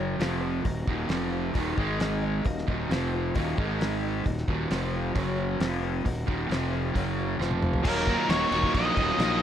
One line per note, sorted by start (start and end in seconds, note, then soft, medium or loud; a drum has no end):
0.00 0.17 F#1 medium
0.00 0.19 F#2 medium
0.00 0.19 C#3 medium
0.00 0.20 F#3 loud
0.00 0.20 C#4 soft
0.00 0.20 F#4 medium
0.00 0.20 C#5 medium
0.19 0.62 F1 medium
0.19 0.65 F2 medium
0.19 0.65 C3 medium
0.19 0.42 F3 medium
0.19 0.65 F3 medium
0.19 0.41 C4 medium
0.19 0.41 F4 medium
0.19 0.39 C5 medium
0.19 snare loud
0.19 open hi-hat soft
0.40 0.65 C4 soft
0.40 0.65 F4 medium
0.40 0.64 C5 medium
0.65 0.86 D#1 medium
0.65 0.84 D#2 medium
0.65 0.84 A#2 medium
0.65 0.87 D#3 medium
0.65 0.88 D#4 medium
0.65 0.87 F#4 medium
0.65 0.87 A#4 medium
0.65 kick medium
0.65 open hi-hat soft
0.87 1.08 D#1 medium
0.87 1.09 D#2 medium
0.87 1.10 A#2 loud
0.87 1.10 D#3 loud
0.87 1.09 D#4 medium
0.87 1.10 F#4 medium
0.87 1.10 A#4 medium
0.87 kick loud
1.08 1.52 F1 medium
1.08 1.55 F2 medium
1.08 1.55 C3 medium
1.08 1.32 F3 medium
1.08 1.55 F3 medium
1.08 1.31 C4 medium
1.08 1.31 F4 medium
1.08 1.29 C5 medium
1.08 snare loud
1.08 open hi-hat soft
1.31 1.54 C4 soft
1.31 1.55 F4 medium
1.31 1.54 C5 medium
1.54 1.76 D#1 medium
1.54 1.77 D#2 loud
1.54 1.77 A#2 loud
1.54 1.77 D#3 medium
1.54 1.77 D#3 loud
1.54 1.78 D#4 medium
1.54 1.78 F#4 medium
1.54 1.76 A#4 loud
1.54 kick loud
1.54 open hi-hat medium
1.76 2.41 G#1 medium
1.76 2.45 G#2 medium
1.76 2.45 D#3 medium
1.76 2.45 G#3 medium
1.76 1.98 D#4 soft
1.76 1.99 G#4 soft
1.76 2.00 D#5 medium
1.76 kick loud
1.99 2.22 G#3 medium
1.99 2.22 D#4 medium
1.99 2.21 G#4 medium
1.99 2.20 D#5 medium
1.99 snare loud
1.99 open hi-hat medium
2.22 2.43 D#4 soft
2.22 2.45 G#4 medium
2.22 2.45 D#5 medium
2.44 2.66 D#1 medium
2.44 2.63 D#2 medium
2.44 2.63 A#2 medium
2.44 2.67 D#3 medium
2.44 2.68 A#3 medium
2.44 2.67 D#4 medium
2.44 2.68 F#4 medium
2.44 2.68 A#4 medium
2.44 2.67 D#5 medium
2.44 kick loud
2.44 open hi-hat medium
2.58 snare soft
2.67 2.89 D#1 medium
2.67 2.89 D#2 medium
2.67 2.90 A#2 medium
2.67 2.90 D#3 loud
2.67 2.91 D#4 medium
2.67 2.91 F#4 medium
2.67 2.91 A#4 soft
2.67 2.91 D#5 medium
2.67 kick loud
2.89 3.32 F1 medium
2.89 3.35 F2 medium
2.89 3.35 C3 loud
2.89 3.13 F3 medium
2.89 3.35 F3 loud
2.89 3.13 C4 medium
2.89 3.13 F4 medium
2.89 3.12 C5 medium
2.89 snare loud
2.89 open hi-hat soft
3.13 3.35 C4 soft
3.13 3.35 F4 soft
3.13 3.36 C5 medium
3.34 3.56 D#1 medium
3.34 3.57 D#2 loud
3.34 3.57 A#2 loud
3.34 3.57 D#3 medium
3.34 3.56 D#3 loud
3.34 3.58 A#3 medium
3.34 3.58 D#4 medium
3.34 3.58 F#4 medium
3.34 3.58 A#4 medium
3.34 3.56 D#5 medium
3.34 kick medium
3.34 open hi-hat medium
3.57 4.22 G#1 medium
3.57 4.25 G#2 medium
3.57 4.25 D#3 loud
3.57 4.25 G#3 loud
3.57 3.79 D#4 soft
3.57 3.80 D#5 soft
3.57 kick loud
3.80 4.02 G#3 medium
3.80 4.03 D#4 medium
3.80 4.03 G#4 medium
3.80 4.01 D#5 medium
3.80 snare loud
3.80 open hi-hat soft
4.03 4.25 D#4 soft
4.03 4.25 G#4 medium
4.03 4.25 D#5 medium
4.24 4.47 D#1 medium
4.24 4.43 D#2 medium
4.24 4.44 A#2 medium
4.24 4.47 D#3 medium
4.24 4.48 D#4 medium
4.24 4.48 F#4 medium
4.24 4.47 A#4 medium
4.24 kick medium
4.24 open hi-hat medium
4.38 snare soft
4.48 4.69 D#1 medium
4.48 4.70 D#2 medium
4.48 4.70 A#2 medium
4.48 4.70 D#3 loud
4.48 4.72 D#4 medium
4.48 4.71 F#4 medium
4.48 4.71 A#4 medium
4.48 kick loud
4.70 5.12 F1 loud
4.70 5.14 F2 loud
4.70 5.15 C3 loud
4.70 5.15 F3 loud
4.70 4.94 F3 medium
4.70 4.94 C4 medium
4.70 4.94 F4 medium
4.70 snare medium
4.70 open hi-hat medium
4.74 4.93 C5 medium
4.94 5.16 C4 soft
4.94 5.16 F4 medium
4.94 5.16 C5 medium
5.15 5.57 F#1 medium
5.15 5.60 F#2 medium
5.15 5.60 C#3 loud
5.15 5.60 F#3 medium
5.15 5.38 F#3 medium
5.15 5.38 C#4 medium
5.15 5.37 F#4 medium
5.15 5.36 C#5 medium
5.15 kick loud
5.15 open hi-hat medium
5.37 5.61 C#4 soft
5.37 5.61 F#4 soft
5.37 5.60 C#5 medium
5.60 6.02 F1 loud
5.60 6.04 F2 medium
5.60 6.04 C3 loud
5.60 5.83 F3 medium
5.60 6.05 F3 medium
5.60 5.83 C4 medium
5.60 5.82 F4 medium
5.60 5.80 C5 medium
5.60 snare loud
5.60 open hi-hat medium
5.82 6.06 C4 soft
5.82 6.05 F4 medium
5.82 6.05 C5 medium
6.05 6.26 D#1 medium
6.05 6.23 D#2 medium
6.05 6.23 A#2 medium
6.05 6.28 D#3 medium
6.05 6.27 D#4 medium
6.05 6.26 F#4 medium
6.05 6.26 A#4 medium
6.05 kick medium
6.05 open hi-hat medium
6.27 6.49 D#1 medium
6.27 6.49 D#2 loud
6.27 6.49 A#2 loud
6.27 6.49 D#3 loud
6.27 6.50 D#4 soft
6.27 6.50 F#4 medium
6.27 6.50 A#4 medium
6.27 kick loud
6.49 6.92 F1 medium
6.49 6.93 F2 loud
6.49 6.94 C3 loud
6.49 6.72 F3 medium
6.49 6.94 F3 loud
6.49 6.73 C4 medium
6.49 6.73 F4 medium
6.49 6.71 C5 medium
6.49 snare medium
6.49 open hi-hat medium
6.73 6.96 C4 soft
6.73 6.96 F4 medium
6.73 6.95 C5 medium
6.94 7.37 F#1 medium
6.94 7.39 F#2 medium
6.94 7.39 C#3 loud
6.94 7.39 F#3 medium
6.94 7.18 F#3 medium
6.94 7.18 C#4 medium
6.94 7.18 F#4 medium
6.94 7.17 C#5 loud
6.94 kick loud
6.94 open hi-hat soft
7.18 7.40 C#4 soft
7.18 7.41 F#4 soft
7.18 7.40 C#5 soft
7.39 7.82 F1 medium
7.39 7.83 F2 medium
7.39 7.84 C3 medium
7.39 7.84 F3 medium
7.39 7.62 F3 medium
7.39 7.63 C4 medium
7.39 7.62 F4 medium
7.39 7.61 C5 medium
7.39 snare medium
7.51 high tom medium
7.62 7.85 C4 soft
7.62 7.84 F4 soft
7.62 7.85 C5 medium
7.62 mid tom medium
7.74 floor tom medium
7.84 8.12 D#1 loud
7.84 8.53 D#2 loud
7.84 8.30 A#2 loud
7.84 8.07 D#3 medium
7.84 8.09 D#3 loud
7.84 8.07 F#3 medium
7.84 8.08 F#3 loud
7.84 8.08 A#3 medium
7.84 8.07 A#3 loud
7.84 8.07 D#4 medium
7.84 8.07 D#4 loud
7.84 8.05 F4 loud
7.84 8.31 A#4 medium
7.84 kick loud
7.84 crash loud
7.84 crash medium
8.07 8.28 D#3 medium
8.07 8.29 F#3 medium
8.07 8.29 A#3 medium
8.07 8.30 D#4 medium
8.07 8.29 F4 medium
8.07 kick medium
8.07 snare soft
8.07 crash medium
8.28 8.43 D#1 loud
8.28 8.52 D#3 medium
8.28 8.52 F#3 medium
8.28 8.51 A#3 medium
8.28 8.52 A#3 medium
8.28 8.52 D#4 medium
8.28 8.51 D#4 loud
8.28 8.51 F4 medium
8.28 8.74 C#5 medium
8.28 snare loud
8.28 crash medium
8.51 8.65 D#1 loud
8.51 8.98 D#2 medium
8.51 8.97 A#2 medium
8.51 8.73 D#3 medium
8.51 8.74 F#3 medium
8.51 8.75 A#3 medium
8.51 8.74 A#3 soft
8.51 8.76 D#4 medium
8.51 8.74 D#4 medium
8.51 8.75 F4 medium
8.51 snare soft
8.51 crash medium
8.63 kick medium
8.73 8.88 A#1 medium
8.73 9.19 D#2 medium
8.73 9.20 A#2 medium
8.73 8.97 D#3 medium
8.73 8.97 F#3 medium
8.73 8.97 A#3 medium
8.73 8.96 A#3 medium
8.73 8.97 D#4 medium
8.73 8.96 D#4 medium
8.73 8.96 F4 medium
8.73 9.42 D#5 medium
8.73 kick loud
8.73 crash medium
8.96 9.10 D#1 medium
8.96 9.19 D#3 medium
8.96 9.19 F#3 medium
8.96 9.19 A#3 medium
8.96 9.19 A#3 soft
8.96 9.19 D#4 medium
8.96 9.19 D#4 soft
8.96 9.19 F4 soft
8.96 kick loud
8.96 crash medium
9.18 9.42 A#1 medium
9.18 9.42 D#2 medium
9.18 9.42 A#2 loud
9.18 9.42 D#3 medium
9.18 9.42 D#3 loud
9.18 9.42 F#3 medium
9.18 9.42 A#3 medium
9.18 9.41 A#3 loud
9.18 9.42 D#4 medium
9.18 9.40 D#4 loud
9.18 9.40 F4 medium
9.18 snare loud
9.18 crash medium